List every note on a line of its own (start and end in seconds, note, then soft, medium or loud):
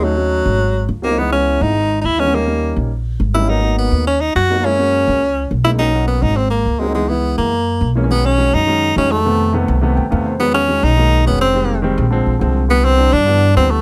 0.00 0.40 D#2 medium
0.00 0.12 F#3 medium
0.00 0.90 F#3 medium
0.00 0.12 A3 medium
0.00 0.13 C#4 medium
0.00 0.13 D#4 medium
0.16 0.57 F#3 medium
0.16 0.57 A3 medium
0.16 0.58 C#4 medium
0.16 0.58 D#4 medium
0.45 0.86 G#1 medium
0.89 1.56 C#2 medium
1.02 1.08 F#3 medium
1.02 1.08 A#3 medium
1.02 1.20 A#3 medium
1.02 1.09 C4 medium
1.02 1.09 D#4 medium
1.09 1.15 F#3 medium
1.09 1.15 A#3 medium
1.09 1.16 C4 medium
1.09 1.16 D#4 medium
1.17 1.27 E3 medium
1.17 1.28 G#3 medium
1.17 1.28 B3 medium
1.17 1.32 B3 medium
1.17 1.29 D#4 medium
1.31 1.72 E3 medium
1.31 1.72 G#3 medium
1.31 1.73 B3 medium
1.31 1.64 C#4 medium
1.31 1.73 E4 medium
1.61 2.01 G#1 medium
1.61 2.00 D#4 medium
2.01 2.71 D#2 medium
2.01 2.07 D#4 medium
2.01 2.21 E4 medium
2.18 2.23 E3 medium
2.18 2.24 G#3 medium
2.18 2.24 B3 medium
2.18 2.36 C#4 medium
2.18 2.24 D#4 medium
2.25 2.31 E3 medium
2.25 2.31 G#3 medium
2.25 2.31 B3 medium
2.25 2.32 C#4 medium
2.32 2.43 G3 medium
2.32 2.43 A#3 medium
2.32 2.77 A#3 medium
2.32 2.44 C#4 medium
2.32 2.44 D#4 medium
2.46 2.88 G3 medium
2.46 2.88 A#3 medium
2.46 2.88 C#4 medium
2.46 2.89 D#4 medium
2.76 3.17 A#1 medium
3.20 3.87 G#1 medium
3.34 3.39 G3 medium
3.34 3.39 A#3 medium
3.34 3.40 C#4 medium
3.34 3.40 D#4 medium
3.34 3.50 E4 medium
3.40 3.46 G3 medium
3.40 3.46 A#3 medium
3.40 3.47 C#4 medium
3.40 3.47 D#4 medium
3.48 3.59 F#3 medium
3.48 3.59 A#3 medium
3.48 3.59 B3 medium
3.48 3.78 D#4 medium
3.48 3.60 D#4 medium
3.62 4.03 F#3 medium
3.62 4.04 A#3 medium
3.62 4.04 B3 medium
3.62 4.04 D#4 medium
3.78 4.05 B3 medium
3.91 4.32 D#2 medium
4.07 4.22 C#4 medium
4.21 4.35 D#4 medium
4.35 5.02 F#2 medium
4.35 4.66 F#4 loud
4.49 4.55 F#3 medium
4.49 4.55 A#3 medium
4.49 4.55 B3 medium
4.49 4.56 D#4 medium
4.56 4.62 F#3 medium
4.56 4.62 A#3 medium
4.56 4.63 B3 medium
4.56 4.63 D#4 medium
4.63 4.74 G#3 medium
4.63 4.74 A#3 medium
4.63 5.51 C#4 medium
4.63 4.75 C#4 medium
4.63 4.75 E4 medium
4.78 5.19 G#3 medium
4.78 5.19 A#3 medium
4.78 5.19 C#4 medium
4.78 5.20 F#4 medium
5.07 5.48 C#2 medium
5.51 6.18 B1 medium
5.64 5.70 G#3 medium
5.64 5.70 A#3 medium
5.64 5.71 C#4 medium
5.64 5.71 D#4 medium
5.64 5.71 E4 medium
5.71 5.77 G#3 medium
5.71 5.77 A#3 medium
5.71 5.78 C#4 medium
5.71 5.78 D#4 medium
5.78 5.89 F#3 medium
5.78 5.89 A#3 medium
5.78 5.90 C#4 medium
5.78 6.06 D#4 medium
5.78 5.90 D#4 medium
5.93 6.34 F#3 medium
5.93 6.34 A#3 medium
5.93 6.35 C#4 medium
5.93 6.35 F#4 medium
6.07 6.24 B3 medium
6.22 6.63 G#1 medium
6.22 6.38 D#4 medium
6.36 6.49 C4 medium
6.50 6.81 A#3 medium
6.66 7.33 C#2 medium
6.79 6.85 F#3 medium
6.79 6.94 G#3 medium
6.79 6.86 A#3 medium
6.79 6.86 C4 medium
6.79 6.86 D#4 medium
6.86 6.92 F#3 medium
6.86 6.93 A#3 medium
6.86 6.93 C4 medium
6.86 6.93 D#4 medium
6.94 7.05 E3 medium
6.94 7.10 G#3 medium
6.94 7.05 G#3 medium
6.94 7.05 B3 medium
6.94 7.06 D#4 medium
7.08 7.49 E3 medium
7.08 7.49 G#3 medium
7.08 7.37 B3 medium
7.08 7.50 B3 medium
7.08 7.50 E4 medium
7.38 7.78 F#2 medium
7.38 7.92 A#3 medium
7.81 8.48 B1 medium
7.95 8.00 E3 medium
7.95 8.01 G#3 medium
7.95 8.01 A#3 medium
7.95 8.01 C#4 medium
8.02 8.08 E3 medium
8.02 8.08 G#3 medium
8.02 8.08 A#3 medium
8.02 8.09 C#4 medium
8.10 8.30 D#3 medium
8.10 8.30 F#3 medium
8.10 8.31 G#3 medium
8.10 8.27 B3 medium
8.10 8.31 C#4 medium
8.26 8.55 C#4 medium
8.38 8.59 D#3 medium
8.38 8.59 F#3 medium
8.38 8.59 G#3 medium
8.38 8.60 C#4 medium
8.54 8.94 F#2 medium
8.54 8.97 D#4 loud
8.66 8.87 D#3 medium
8.66 8.88 F#3 medium
8.66 8.88 G#3 medium
8.66 8.88 C#4 medium
8.96 9.63 F2 medium
8.96 9.16 D#3 medium
8.96 9.17 F#3 medium
8.96 9.17 G#3 medium
8.96 9.13 C#4 medium
8.96 9.17 D#4 medium
9.12 9.54 A3 medium
9.24 9.45 C3 medium
9.24 9.45 D#3 medium
9.24 9.46 A3 medium
9.24 9.46 B3 medium
9.53 9.73 C3 medium
9.53 9.74 D#3 medium
9.53 9.74 A3 medium
9.53 9.74 B3 loud
9.68 9.95 C2 medium
9.81 10.02 C3 medium
9.81 10.02 D#3 medium
9.81 10.03 A3 medium
9.81 10.03 B3 loud
9.96 10.10 D2 medium
9.96 10.10 G5 medium
10.10 10.78 E2 medium
10.10 10.31 C3 medium
10.10 10.31 D#3 medium
10.10 10.31 A3 medium
10.10 10.32 B3 medium
10.10 10.25 F5 medium
10.26 10.39 C5 medium
10.39 10.60 D#3 medium
10.39 10.60 F#3 medium
10.39 10.61 G#3 medium
10.39 10.53 B3 medium
10.39 10.61 B3 medium
10.54 10.85 C#4 medium
10.68 10.89 D#3 medium
10.68 10.89 F#3 medium
10.68 10.89 G#3 medium
10.68 10.89 C#4 medium
10.83 11.23 B1 medium
10.83 11.26 D#4 loud
10.96 11.17 D#3 medium
10.96 11.17 F#3 medium
10.96 11.18 G#3 medium
10.96 11.18 A#3 medium
11.25 11.93 F1 medium
11.25 11.46 D#3 medium
11.25 11.46 F#3 medium
11.25 11.46 G#3 medium
11.25 11.40 B3 medium
11.25 11.47 C#4 medium
11.41 11.81 C4 medium
11.54 11.75 D#3 medium
11.54 11.75 G3 medium
11.54 11.75 G#3 medium
11.54 11.76 C4 medium
11.82 12.03 D#3 medium
11.82 12.04 G3 medium
11.82 12.04 G#3 medium
11.82 12.04 C4 medium
11.98 12.25 A#1 medium
12.10 12.32 D3 medium
12.10 12.32 F3 medium
12.10 12.32 G#3 medium
12.10 12.33 C4 loud
12.26 12.40 A#1 medium
12.39 13.08 C2 medium
12.39 12.60 D3 medium
12.39 12.61 F3 medium
12.39 12.61 G#3 medium
12.39 12.61 C4 medium
12.69 12.89 D3 medium
12.69 12.90 E3 medium
12.69 12.90 G3 medium
12.69 12.86 B3 medium
12.69 12.90 B3 medium
12.84 13.14 C4 medium
12.97 13.18 D3 medium
12.97 13.18 E3 medium
12.97 13.19 G3 medium
12.97 13.19 D4 medium
13.13 13.53 G2 medium
13.13 13.56 D4 loud
13.26 13.47 D3 medium
13.26 13.47 E3 medium
13.26 13.47 G3 medium
13.26 13.48 B3 medium
13.55 13.82 D2 medium
13.55 13.76 D3 medium
13.55 13.76 E3 medium
13.55 13.76 G3 medium
13.55 13.77 B3 medium
13.55 13.72 C4 medium
13.71 13.82 A3 medium